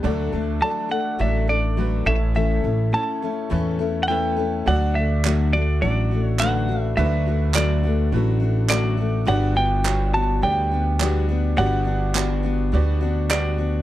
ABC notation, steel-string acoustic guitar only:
X:1
M:4/4
L:1/8
Q:1/4=104
K:D
V:1 name="Steel-string acoustic guitar"
[D,F,A,DA] [A,DA] [F,A,DA] [A,DA] [D,F,A,DA] [A,DA] [F,A,DA] [A,CEA] | [A,,E,A,CEA] [A,CEA] [A,CEA] [A,CEA] [A,,E,A,CEA] [A,CEA] [A,CEA] [A,CEA] | [D,F,A,DF] [A,DF] [D,F,A,DF] [A,DF] [F,A,DF] [A,DF] [D,F,A,DF] [A,DF] | [D,F,A,DF] [A,DF] [D,F,A,DF] [A,DF] [F,A,DF] [A,DF] [D,F,A,DF] [A,DF] |
[G,B,DF] [B,DF] [G,B,DF] [B,DF] [G,B,DF] [B,DF] [G,B,DF] [B,DF] | [G,B,DF] [B,DF] [G,B,DF] [B,DF] [G,B,DF] [B,DF] [G,B,DF] [B,DF] |]